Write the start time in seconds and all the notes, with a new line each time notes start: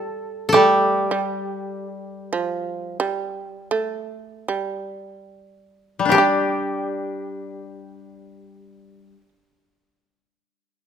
Already playing: G3 G4 A4
0.49 G4 A4
0.54 G3 A3
1.11 G3
2.33 F3
3.00 G3
3.71 A3
4.48 G3
5.99 G3
6.05 D4 G4
6.10 G3 G4
6.15 D4 G4